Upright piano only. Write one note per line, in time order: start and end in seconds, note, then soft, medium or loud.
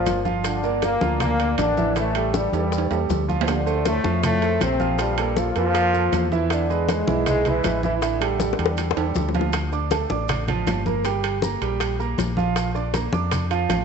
0.00 0.18 A#3 medium
0.00 0.18 A#4 medium
0.00 0.19 D5 medium
0.25 0.56 F3 medium
0.25 0.56 F4 medium
0.25 0.57 F5 medium
0.64 0.95 A#3 medium
0.64 0.95 A#4 medium
0.64 0.95 D5 medium
1.02 1.33 F3 medium
1.02 1.33 F4 medium
1.02 1.33 F5 medium
1.39 1.70 A#3 medium
1.39 1.71 A#4 medium
1.39 1.71 D5 medium
1.77 1.93 E3 medium
1.77 1.93 E4 medium
1.77 1.93 E5 medium
1.96 2.11 E3 medium
1.96 2.12 E4 medium
1.96 2.12 E5 medium
2.15 2.46 G3 medium
2.15 2.47 G4 medium
2.15 2.47 A4 medium
2.53 2.84 G3 medium
2.53 2.84 G4 medium
2.53 2.84 A4 medium
2.91 3.22 G3 medium
2.91 3.22 G4 medium
2.91 3.23 A4 medium
3.28 3.60 F3 medium
3.28 3.60 F4 medium
3.28 3.60 F5 medium
3.66 3.98 A3 medium
3.66 3.98 A4 medium
3.66 3.98 C5 medium
4.04 4.35 F3 medium
4.04 4.35 F4 medium
4.04 4.35 F5 medium
4.42 4.73 A3 medium
4.42 4.74 A4 medium
4.42 4.74 C5 medium
4.80 4.95 F3 medium
4.80 4.96 F4 medium
4.80 4.96 F5 medium
4.99 5.14 F3 medium
4.99 5.14 F4 medium
4.99 5.15 F5 medium
5.18 5.49 A#3 medium
5.18 5.49 A4 medium
5.18 5.49 A#4 medium
5.56 5.87 A#3 medium
5.56 5.87 A4 medium
5.56 5.87 A#4 medium
5.94 6.25 A#3 medium
5.94 6.25 A4 medium
5.94 6.26 A#4 medium
6.32 6.63 E3 medium
6.32 6.63 E4 loud
6.32 6.63 E5 medium
6.70 7.01 G#3 medium
6.70 7.01 G#4 medium
6.70 7.01 B4 medium
7.07 7.38 E3 medium
7.07 7.38 E4 medium
7.07 7.39 E5 medium
7.45 7.76 G#3 medium
7.45 7.76 G#4 medium
7.45 7.77 B4 medium
7.84 7.99 E3 medium
7.84 7.99 E4 medium
7.84 7.99 E5 medium
8.02 8.17 E3 medium
8.02 8.18 E4 medium
8.02 8.18 E5 medium
8.21 8.52 G3 medium
8.21 8.52 G4 medium
8.21 8.52 A4 medium
8.59 8.90 G3 medium
8.59 8.90 G4 medium
8.59 8.90 A4 medium
8.96 9.28 G3 medium
8.96 9.28 G4 medium
8.96 9.28 A4 medium
9.34 9.50 F3 medium
9.34 9.50 F4 medium
9.34 9.50 F5 medium
9.73 9.88 D4 medium
9.73 9.88 D5 medium
9.73 9.88 D6 medium
9.91 10.07 A3 medium
9.91 10.07 A4 medium
9.91 10.07 A5 medium
10.10 10.41 D4 medium
10.10 10.41 D5 medium
10.10 10.41 D6 medium
10.49 10.79 F3 medium
10.49 10.79 F4 medium
10.49 10.80 F5 medium
10.86 11.02 A#3 medium
10.86 11.02 A#4 medium
10.86 11.02 A#5 medium
11.05 11.36 G3 medium
11.05 11.36 G4 medium
11.05 11.36 G5 medium
11.43 11.58 A#3 medium
11.43 11.58 A#4 medium
11.43 11.59 A#5 medium
11.61 11.93 G3 medium
11.61 11.93 G4 medium
11.61 11.93 G5 medium
11.99 12.30 A#3 medium
11.99 12.31 A#4 medium
11.99 12.31 A#5 medium
12.37 12.68 F3 medium
12.37 12.68 F4 medium
12.37 12.69 F5 medium
12.75 12.90 D4 medium
12.75 12.91 D5 medium
12.75 12.91 D6 medium
12.94 13.09 A#3 medium
12.94 13.09 A#4 medium
12.94 13.10 A#5 medium
13.13 13.44 D4 medium
13.13 13.44 D5 medium
13.13 13.44 D6 medium
13.51 13.82 F3 medium
13.51 13.82 F4 loud
13.51 13.82 F5 medium